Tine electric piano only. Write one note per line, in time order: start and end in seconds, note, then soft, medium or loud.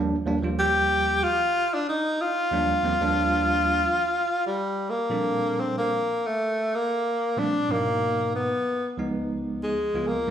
0.00 0.14 D#2 medium
0.00 0.14 F3 medium
0.00 0.15 G3 medium
0.00 0.15 A#3 medium
0.00 0.15 D4 loud
0.26 0.37 D#2 medium
0.26 0.37 F3 medium
0.26 0.37 G3 medium
0.26 0.37 A#3 medium
0.26 0.37 D4 loud
0.43 1.22 D#2 medium
0.43 1.22 F3 medium
0.43 1.22 G3 medium
0.43 1.22 A#3 medium
0.43 1.23 F4 medium
2.52 2.72 D#2 medium
2.52 2.72 F3 medium
2.52 2.73 G3 medium
2.52 2.73 A#3 medium
2.52 2.73 D4 medium
2.83 2.94 D#2 medium
2.83 2.94 F3 medium
2.83 2.95 G3 medium
2.83 2.95 A#3 medium
2.83 2.95 C4 medium
3.01 3.80 D#2 medium
3.01 3.80 F3 medium
3.01 3.80 G3 medium
3.01 3.80 A#3 medium
3.01 3.81 D4 medium
5.10 5.90 A#2 medium
5.10 5.90 F3 medium
5.10 5.90 G3 medium
5.10 5.91 C4 medium
5.10 5.91 D4 medium
5.10 5.90 A4 medium
7.37 7.57 A#2 medium
7.37 7.57 F3 medium
7.37 7.57 G3 medium
7.37 7.57 A3 medium
7.37 7.57 C4 medium
7.37 7.58 D4 medium
7.69 8.49 G#2 medium
7.69 8.50 B2 medium
7.69 8.49 F#3 medium
7.69 8.50 A#3 medium
7.69 8.50 D#4 medium
8.97 9.76 C#2 medium
8.97 9.76 F3 medium
8.97 9.76 G#3 medium
8.97 9.77 B3 medium
8.97 9.77 D#4 medium
9.95 10.15 C#2 medium
9.95 10.15 F3 medium
9.95 10.15 G#3 medium
9.95 10.16 B3 medium
9.95 10.16 F4 medium